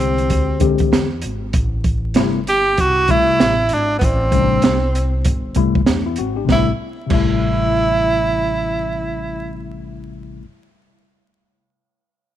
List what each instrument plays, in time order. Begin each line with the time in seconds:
Already playing: upright bass C2, tine electric piano D3 G#3 C4 G4, tenor saxophone C4
0.00 closed hi-hat
0.18 closed hi-hat
0.30 upright bass D2, kick, closed hi-hat
0.60 tine electric piano D3 G#3 C4 G4, kick, closed hi-hat
0.78 muted upright bass stroke, kick, closed hi-hat
0.92 upright bass E2, snare, closed hi-hat
1.22 upright bass G#1, closed hi-hat
1.53 upright bass A1, kick, closed hi-hat
1.84 kick, closed hi-hat
2.14 upright bass G1, tine electric piano C3 G3 A3 E4, snare, closed hi-hat
2.47 tenor saxophone G4, closed hi-hat
2.78 upright bass C2, tenor saxophone F#4, kick, closed hi-hat
3.08 tine electric piano B2 G3 A3 E4, tenor saxophone E4, kick, closed hi-hat
3.15 tine electric piano C3
3.28 muted upright bass stroke
3.40 upright bass A1, snare, closed hi-hat
3.69 upright bass G#1, closed hi-hat
3.74 tenor saxophone D4
3.99 upright bass A1, tenor saxophone B3, kick, closed hi-hat
4.04 tenor saxophone C4
4.32 tine electric piano C3 G3 A3 C#4, kick, closed hi-hat
4.40 tine electric piano D4
4.62 upright bass C2, snare, closed hi-hat
4.95 closed hi-hat
5.25 upright bass G1, kick, closed hi-hat
5.55 tine electric piano C3 G3 A3 E4, kick, closed hi-hat
5.75 kick
5.86 upright bass E2, tine electric piano A3 D4, snare, closed hi-hat
6.06 tine electric piano B3 E4
6.16 upright bass G#1, tine electric piano C4 F#4, closed hi-hat
6.36 tine electric piano D4 G4
6.45 tine electric piano C3 G3, kick, snare
6.49 upright bass A1, tine electric piano A3 E4, tenor saxophone E4
7.06 tine electric piano C3 G3, crash
7.11 upright bass A1, tine electric piano A3 E4, tenor saxophone E4, kick